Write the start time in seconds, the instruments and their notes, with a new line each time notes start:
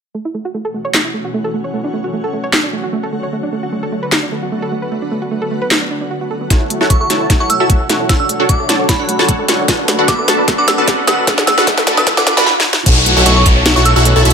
0.15 ambient pad B2 E3 F#3 A3 C#4 F#4, synth arpeggio sound A3
0.25 synth arpeggio sound E4
0.34 synth arpeggio sound A3
0.45 synth arpeggio sound F#4
0.54 synth arpeggio sound A3
0.65 synth arpeggio sound A4
0.74 synth arpeggio sound A3
0.85 synth arpeggio sound C#5
0.94 synth arpeggio sound A3, snare, clap
1.05 synth arpeggio sound E4
1.14 synth arpeggio sound A3
1.24 synth arpeggio sound F#4
1.34 synth arpeggio sound A3
1.44 synth arpeggio sound A4
1.54 synth arpeggio sound A3
1.64 synth arpeggio sound C#5
1.74 ambient pad D3 F#4, synth arpeggio sound A3
1.84 synth arpeggio sound D4
1.93 synth arpeggio sound A3
2.04 synth arpeggio sound F#4
2.13 synth arpeggio sound A3
2.24 synth arpeggio sound A4
2.33 synth arpeggio sound A3
2.44 synth arpeggio sound C#5
2.53 synth arpeggio sound A3, snare, clap
2.63 synth arpeggio sound D4
2.73 synth arpeggio sound A3
2.83 synth arpeggio sound F#4
2.93 synth arpeggio sound A3
3.03 synth arpeggio sound A4
3.13 synth arpeggio sound A3
3.23 synth arpeggio sound C#5
3.33 synth arpeggio sound A3, ambient pad B3 F#4
3.43 synth arpeggio sound D4
3.52 synth arpeggio sound A3
3.63 synth arpeggio sound F#4
3.72 synth arpeggio sound A3
3.83 synth arpeggio sound A4
3.92 synth arpeggio sound A3
4.03 synth arpeggio sound B4
4.12 synth arpeggio sound A3, snare, clap
4.23 synth arpeggio sound D4
4.32 synth arpeggio sound A3
4.42 synth arpeggio sound F#4
4.52 synth arpeggio sound A3
4.62 synth arpeggio sound A4
4.72 synth arpeggio sound A3
4.82 synth arpeggio sound B4
4.91 synth arpeggio sound A3
5.02 synth arpeggio sound D4
5.11 synth arpeggio sound A3
5.22 synth arpeggio sound F#4
5.31 synth arpeggio sound A3
5.42 synth arpeggio sound A4
5.51 synth arpeggio sound A3
5.62 synth arpeggio sound B4
5.71 synth arpeggio sound A3, snare, clap
5.81 synth arpeggio sound D4
5.91 synth arpeggio sound D4
6.01 synth arpeggio sound D4
6.11 synth arpeggio sound F#4
6.21 synth arpeggio sound F#4
6.30 synth arpeggio sound A4
6.41 synth arpeggio sound B3
6.50 ambient pad B2 E3 F#3 A3 C#4 F#4, synth arpeggio sound A3, supersaw synth E4 F#4 A4 C#5 F#5, kick, snare, closed hi-hat, riser
6.61 synth arpeggio sound E4
6.70 synth arpeggio sound A3, closed hi-hat
6.81 supersaw synth E4 F#4 A4 C#5 F#5, synth arpeggio sound F#4, snare
6.90 synth arpeggio sound A3, supersaw synth C#5 E5, synth bell C#6, kick, closed hi-hat
7.01 synth arpeggio sound A4, synth bell C#6
7.10 synth arpeggio sound A3, supersaw synth E4 F#4 A4 C#5 A5, snare, closed hi-hat
7.20 synth arpeggio sound C#5
7.30 synth arpeggio sound A3, supersaw synth E4 F#4 A4 C#5 A5, kick, snare, closed hi-hat
7.40 supersaw synth E4 F#4 A4 C#5 F#5, synth arpeggio sound E4, synth bell C#6
7.50 synth arpeggio sound A3, synth bell E6, closed hi-hat
7.60 supersaw synth E4 F#4 A4 C#5 A5, synth arpeggio sound F#4, synth bell E6
7.70 synth arpeggio sound A3, supersaw synth E4 F#4 A4 C#5 F#5, kick, closed hi-hat
7.80 synth arpeggio sound A4
7.89 synth arpeggio sound A3, supersaw synth E4 F#4 A4 C#5 F#5, snare, closed hi-hat
8.00 synth arpeggio sound C#5
8.09 ambient pad D3 F#4, synth arpeggio sound A3, supersaw synth D4 F#4 A4 C#5 F#5, synth bell E6, kick, snare, closed hi-hat
8.20 synth arpeggio sound D4, synth bell E6
8.29 synth arpeggio sound A3, closed hi-hat
8.40 supersaw synth D4 F#4 A4 C#5 F#5, synth arpeggio sound F#4
8.49 synth arpeggio sound A3, supersaw synth D4 F#4 A4 C#5 E5, synth bell D6, kick, closed hi-hat
8.60 synth arpeggio sound A4
8.69 synth arpeggio sound A3, supersaw synth D4 F#4 A4 C#5 A5, snare, closed hi-hat
8.79 synth arpeggio sound C#5
8.89 synth arpeggio sound A3, supersaw synth D4 F#4 A4 C#5 A5, synth bell B5, kick, snare, closed hi-hat
8.99 supersaw synth D4 F#4 A4 C#5 F#5, synth arpeggio sound D4
9.09 synth arpeggio sound A3, closed hi-hat
9.19 supersaw synth D4 F#4 A4 C#5 A5, synth arpeggio sound F#4, snare
9.29 synth arpeggio sound A3, supersaw synth D4 F#4 A4 C#5 F#5, kick, closed hi-hat
9.39 synth arpeggio sound A4
9.48 synth arpeggio sound A3, supersaw synth D4 F#4 A4 C#5 F#5, snare, closed hi-hat
9.59 synth arpeggio sound C#5
9.68 synth arpeggio sound A3, ambient pad A3 B3, supersaw synth D4 F#4 A4 B4 F#5, kick, snare, closed hi-hat
9.79 synth arpeggio sound D4
9.88 synth arpeggio sound A3, snare, closed hi-hat
9.99 supersaw synth D4 F#4 A4 B4 F#5, synth arpeggio sound F#4
10.08 synth arpeggio sound A3, supersaw synth F#4, synth bell D6, kick, snare, closed hi-hat
10.18 synth arpeggio sound A4, synth bell D6
10.28 synth arpeggio sound A3, supersaw synth D4 F#4 A4 B4 A5, snare, closed hi-hat
10.38 synth arpeggio sound B4
10.48 synth arpeggio sound A3, supersaw synth D4 F#4 A4 B4 A5, kick, snare, closed hi-hat
10.58 supersaw synth D4 F#4 A4 B4 F#5, synth arpeggio sound D4, synth bell D6
10.68 synth arpeggio sound A3, synth bell E6, snare, closed hi-hat
10.78 supersaw synth D4 F#4 A4 B4 A5, synth arpeggio sound F#4, synth bell E6
10.87 synth arpeggio sound A3, supersaw synth D4 F#4 A4 B4 F#5, kick, snare, closed hi-hat
10.98 synth arpeggio sound A4
11.07 synth arpeggio sound A3, supersaw synth D4 F#4 A4 B4 F#5, synth bell E6, snare, closed hi-hat
11.18 synth arpeggio sound B4
11.27 synth arpeggio sound A3, supersaw synth D4 F#4 A4 B4 F#5, kick, snare, closed hi-hat
11.38 synth arpeggio sound D4, snare
11.47 synth arpeggio sound A3, synth bell E6, snare, closed hi-hat
11.58 supersaw synth D4 F#4 A4 B4 F#5, synth arpeggio sound F#4, synth bell E6, snare
11.67 synth arpeggio sound A3, supersaw synth D4 B4 E5, kick, snare, closed hi-hat
11.77 synth arpeggio sound A4, snare
11.87 synth arpeggio sound A3, supersaw synth D4 F#4 A4 B4 A5, snare, closed hi-hat
11.97 synth arpeggio sound B4, synth bell E6, snare
12.07 synth arpeggio sound A3, supersaw synth D4 F#4 A4 B4 A5, kick, snare, closed hi-hat
12.17 synth arpeggio sound D4, supersaw synth D4 F#4 A4 B4 F#5, synth bell D6, snare
12.26 synth arpeggio sound D4, synth bell D6, snare, closed hi-hat
12.37 synth arpeggio sound D4, supersaw synth D4 F#4 A4 B4 F#5, synth bell B5, snare
12.46 synth bell B5, snare
12.60 snare
12.73 snare
12.86 analog synth bass B1, synth arpeggio sound A3, supersaw synth E4 F#4 A4 C#5 F#5, kick, closed hi-hat, crash, downlifter
12.97 synth arpeggio sound E4
13.06 synth arpeggio sound A3, closed hi-hat
13.16 analog synth bass B1, supersaw synth E4 F#4 A4 C#5 F#5, synth arpeggio sound F#4
13.26 analog synth bass B1, synth arpeggio sound A3, supersaw synth E4 F#4 A4 C#5 E5, synth bell C#6, closed hi-hat
13.36 synth arpeggio sound A4, synth bell C#6
13.46 analog synth bass B1, synth arpeggio sound A3, supersaw synth E4 F#4 A4 C#5 A5, kick, closed hi-hat
13.56 synth arpeggio sound C#5
13.66 analog synth bass B1, synth arpeggio sound A3, supersaw synth E4 F#4 A4 C#5 A5, snare, closed hi-hat
13.76 analog synth bass B1, synth arpeggio sound E4, supersaw synth E4 F#4 A4 C#5 F#5, synth bell C#6
13.85 synth arpeggio sound A3, synth bell E6, closed hi-hat
13.96 analog synth bass B1, supersaw synth E4 F#4 A4 C#5 F#5, synth arpeggio sound F#4, synth bell E6
14.05 synth arpeggio sound A3, closed hi-hat
14.16 analog synth bass B1, supersaw synth E4 F#4 A4 C#5 A5, synth arpeggio sound A4
14.25 analog synth bass B1, synth arpeggio sound A3, supersaw synth E4 F#4 A4 C#5 E5, closed hi-hat
14.30 closed hi-hat